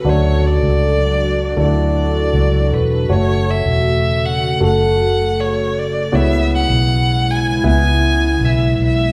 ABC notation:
X:1
M:4/4
L:1/16
Q:1/4=79
K:F#m
V:1 name="Violin"
c2 d6 d6 B2 | c2 e4 f2 f4 c2 d2 | e2 f4 g2 g4 e2 e2 |]
V:2 name="Grand piano"
[A,DF]8 [A,EFd]8 | [A,Fc]8 [A,FA]8 | [B,Ec]8 [B,Ee]8 |]
V:3 name="Grand piano" clef=bass
F,6 z8 z2 | z16 | C,6 z8 z2 |]
V:4 name="Analog synth pad"
[F,DFA]16 | [C,A,]16 | [C,G,B,E]16 |]
V:5 name="Fingered electric bass" clef=bass
D,,3 C,,4- C,, D,,4 C,,2 E,,,2 | F,,,3 E,,,4- E,,, F,,,8 | C,,3 B,,,4- B,,, C,,4 B,,,2 B,,,2 |]